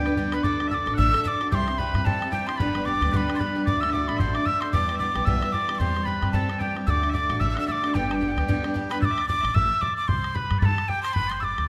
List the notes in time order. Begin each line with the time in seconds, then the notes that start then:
Already playing: D2 G4 G5
0.05 B3 D4 B4, bodhran
0.17 G3 B3 D4 B4, bodhran
0.25 bodhran
0.32 B3 D4 B4 B5, bodhran
0.43 D2 D3 D4 F#4 A4 D5 D6, bodhran
0.59 D4 F#4 A4, bodhran
0.67 D3 E5 E6
0.71 D4 F#4 A4 D5 D6, bodhran
0.86 A1 D4 F#4 A4, bodhran
0.94 F#5 E6
0.98 A1 D3 D4 F#4 A4 E5, bodhran
1.13 D4 F#4 A4, bodhran
1.24 D3 D4 F#4 A4 D5 D6 E6, bodhran
1.40 D4 F#4 A4, bodhran
1.51 C2 C3 G3 C4 E4 G4 C5 C6 D6, bodhran
1.67 C4 E4 G4, bodhran
1.78 G3 C4 E4 G4 B4 B5, bodhran
1.94 G2 C4 E4 G4, bodhran
2.05 G2 C3 G3 C4 E4 G4 A4 A5, bodhran
2.21 C4 E4 G4, bodhran
2.32 G3 C4 E4 G4 G5, bodhran
2.47 C4 E4 G4 C5 C6, bodhran
2.55 D5 B5
2.60 G1 G2 D3 G3 B3 D4 G4 B4, bodhran
2.74 G3 B3 D4 G4, bodhran
2.85 G3 B3 D4 G4 D5 D6, bodhran
3.01 D2 G3 B3 D4 G4, bodhran
3.12 D2 G2 D3 G3 B3 D4 G4 B4 D6, bodhran
3.17 B5
3.28 G3 B3 D4 G4, bodhran
3.35 D5 C6
3.39 G3 B3 D4 G4 B4 B5, bodhran
3.55 G3 B3 D4 G4
3.65 D2 D3 A3 D4 F#4 D5 D6, bodhran
3.81 A3 D4 F#4 E6, bodhran
3.89 D3 E5 D6
3.94 A3 D4 F#4 D5, bodhran
4.08 A1 A3 D4 F#4 B5, bodhran
4.16 D3 C5 E5 C6, bodhran
4.20 A1 A3 D4 F#4
4.34 A3 D4 F#4 D5 D6, bodhran
4.46 D3 A3 D4 F#4 E5 E6, bodhran
4.61 A3 D4 F#4 C5 C6, bodhran
4.72 E2 B2 E3 G3 B3 G4 D5 D6, bodhran
4.88 E3 G3 B3 G4, bodhran
4.95 E5
4.99 E3 G3 B3 G4 D5 D6, bodhran
5.15 B1 E3 G3 B3 G4, bodhran
5.25 B1 E2 B2 E3 G3 B3 G4 E5 E6, bodhran
5.41 E3 G3 B3 G4, bodhran
5.52 E3 G3 B3 G4 D5 D6, bodhran
5.68 E3 G3 B3 G4, bodhran
5.75 C6 D6
5.80 E2 E3 G3 C4 G4 C5, bodhran
5.95 G3 C4 G4, bodhran
6.03 E3 G3 B4 D5 B5, bodhran
6.07 C4 G4
6.22 G2 G3 C4 G4, bodhran
6.32 G2 E3 G3 C4 G4 A4 A5, bodhran
6.49 G3 C4 G4, bodhran
6.59 E3 G3 C4 G4 G5, bodhran
6.75 G3 C4 G4, bodhran
6.87 D2 D3 A3 D4 F#4 D5 D6 E6, bodhran
7.02 A3 D4 F#4, bodhran
7.09 E5 D6
7.14 D3 A3 D4 F#4 D5, bodhran
7.29 A1 A3 D4 F#4, bodhran
7.40 A1 D3 A3 D4 F#4 E5 E6, bodhran
7.50 E6
7.54 A3 D4 F#4 E5 F#5, bodhran
7.59 E6
7.66 D3 A3 D4 F#4 D5 E6, bodhran
7.72 D6
7.83 A3 D4 F#4, bodhran
7.88 A4
7.94 G1 G2 D3 G3 B3 D4 G4 G5, bodhran
8.09 G3 B3 D4 G4 A5, bodhran
8.15 G5
8.21 G3 B3 D4 G4, bodhran
8.28 F#5 G5
8.36 D2 G3 B3 D4 G4, bodhran
8.48 D2 G2 D3 G3 B3 D4 G4, bodhran
8.63 G3 B3 D4 G4, bodhran
8.74 G3 B3 D4 G4, bodhran
8.89 G3 B3 D4 G4 B4 B5, bodhran
9.01 D2 D5 D6 E6, bodhran
9.10 E5
9.18 D5, bodhran
9.28 D5 D6, bodhran
9.40 A1 D5 E5
9.45 bodhran
9.54 A1 E5 E6, bodhran
9.81 D5 D6, bodhran
9.97 D6
10.08 C2 C5 C6, bodhran
10.24 bodhran
10.35 B4 B5, bodhran
10.51 G2, bodhran
10.59 G2 D5 B5, bodhran
10.63 A4 A5
10.78 bodhran
10.88 G4 G5, bodhran
11.03 C5 C6, bodhran
11.13 G1 B4 B5, bodhran
11.27 D5 C6
11.31 C5, bodhran
11.40 D5 D6 E6, bodhran
11.58 D2, bodhran